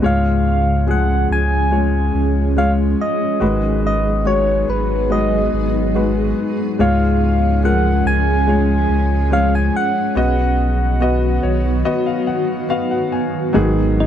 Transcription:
0.02 1.26 C#2 medium
0.02 1.26 G#2 soft
0.02 3.38 F3 medium
0.02 0.83 G#3 medium
0.02 3.38 G#3 medium
0.02 3.37 C#4 medium
0.02 0.83 F4 medium
0.02 10.13 G#4 medium
0.02 0.84 C#5 medium
0.02 0.85 F5 medium
0.87 1.68 F3 medium
0.87 1.68 G#3 medium
0.87 1.68 G#4 medium
0.87 1.29 F#5 medium
1.30 2.11 C#2 medium
1.30 2.54 G#5 loud
1.71 2.52 G#3 medium
1.71 2.52 F4 soft
1.71 2.53 C#5 medium
2.14 2.95 C#2 medium
2.57 3.37 G#3 medium
2.57 3.37 F4 medium
2.57 3.38 C#5 medium
2.57 2.72 F5 medium
3.01 3.81 D#5 loud
3.40 4.64 G#1 loud
3.40 4.64 G#2 soft
3.40 4.64 D#3 soft
3.40 6.76 F#3 medium
3.40 4.21 G#3 medium
3.40 6.77 B3 medium
3.40 6.76 D#4 medium
3.40 4.21 F#4 medium
3.40 4.22 B4 medium
3.87 4.28 D#5 medium
4.25 5.06 G#3 medium
4.25 5.06 F#4 medium
4.25 4.69 C#5 medium
4.25 5.07 C#5 medium
4.68 5.49 G#1 medium
4.68 5.13 B4 medium
5.10 5.90 G#3 medium
5.10 5.91 F#4 medium
5.10 5.91 B4 medium
5.10 6.38 D#5 medium
5.53 6.33 G#1 medium
5.95 6.75 G#3 medium
5.95 6.75 F#4 medium
5.95 6.76 B4 medium
6.78 8.02 C#2 medium
6.78 8.02 G#2 medium
6.78 10.14 F3 medium
6.78 10.14 G#3 medium
6.78 7.59 G#3 medium
6.78 10.14 C#4 medium
6.78 7.60 F4 medium
6.78 7.60 C#5 medium
6.78 7.61 F5 medium
7.64 8.45 F3 medium
7.64 8.44 G#3 medium
7.64 8.45 A#4 medium
7.64 8.08 F#5 medium
8.05 8.86 C#2 medium
8.05 9.35 G#5 loud
8.47 9.28 G#3 medium
8.47 9.29 F4 medium
8.47 9.29 C#5 medium
8.89 9.70 C#2 medium
9.31 10.13 F3 medium
9.31 10.12 G#3 medium
9.31 10.13 C#5 medium
9.31 9.57 F5 medium
9.55 9.76 G#5 medium
9.76 12.68 F#5 loud
10.15 11.39 B1 loud
10.15 13.51 D#3 medium
10.15 13.51 F#3 medium
10.15 10.97 B3 medium
10.15 13.51 B3 medium
10.15 13.51 F#4 medium
10.15 10.97 F#4 medium
10.15 10.98 D#5 medium
11.00 11.81 B3 medium
11.00 11.82 F#4 medium
11.00 11.82 D#5 medium
11.43 11.83 B1 medium
11.43 11.83 C#5 medium
11.85 12.66 B3 medium
11.85 12.66 F#4 medium
11.85 12.67 D#5 medium
12.06 12.27 F5 medium
12.27 12.67 F#5 medium
12.69 13.50 B3 medium
12.69 13.51 F#4 medium
12.69 13.51 F5 medium
12.91 13.11 F#5 medium
13.12 13.52 G#5 medium
13.53 14.07 G#1 loud
13.53 14.07 G#2 medium
13.53 14.07 D#3 medium
13.53 14.07 F#3 medium
13.53 14.07 B3 medium
13.53 14.07 D#4 medium
13.53 14.07 G#4 medium
13.53 14.07 D#5 medium
13.53 14.07 G#5 medium
14.00 14.07 D#4 medium

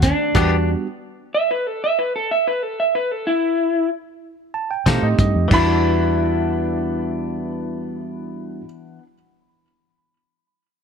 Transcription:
0.00 0.11 D#2 medium
0.00 0.31 D#3 medium
0.00 0.31 A3 medium
0.00 0.31 C4 medium
0.00 0.69 D4 medium
0.00 0.31 A4 medium
0.00 kick medium
0.00 snare soft
0.00 closed hi-hat medium
0.34 0.74 E2 loud
0.34 0.55 E3 medium
0.34 0.86 G3 medium
0.34 0.86 B3 medium
0.34 0.55 B3 medium
0.34 0.86 D4 medium
0.34 0.55 D4 medium
0.34 0.86 F#4 medium
0.34 0.56 G4 medium
0.34 kick loud
0.34 closed hi-hat medium
0.34 crash medium
1.34 1.49 E5 medium
1.51 1.67 B4 medium
1.67 1.82 A4 medium
1.84 1.98 E5 medium
1.99 2.14 B4 medium
2.16 2.30 A4 medium
2.31 2.46 E5 medium
2.47 2.63 B4 medium
2.63 2.78 A4 medium
2.80 2.94 E5 medium
2.95 3.12 B4 medium
3.12 3.26 A4 medium
3.27 3.89 E4 loud
4.54 4.73 A5 medium
4.71 4.89 G5 medium
4.86 5.02 B2 medium
4.86 5.06 F3 medium
4.86 5.51 A3 medium
4.86 5.51 C4 medium
4.86 5.07 C4 medium
4.86 5.51 D#4 medium
4.86 5.07 D#4 medium
4.86 5.52 G4 medium
4.86 5.07 A4 medium
4.86 5.02 F5 medium
4.86 kick medium
4.86 snare loud
4.86 closed hi-hat medium
4.86 tambourine loud
5.02 5.17 A2 medium
5.02 5.18 D#5 medium
5.19 5.34 G2 medium
5.19 5.50 D#5 medium
5.19 kick medium
5.19 closed hi-hat medium
5.35 5.49 F2 medium
5.48 8.61 E2 medium
5.48 8.98 E3 medium
5.48 8.60 G3 medium
5.48 8.61 B3 medium
5.48 kick loud
5.48 crash medium
5.52 9.02 B3 medium
5.52 8.63 D4 medium
5.52 9.06 D4 medium
5.52 8.64 E4 medium
5.52 8.64 F#4 medium
5.52 8.64 B5 loud

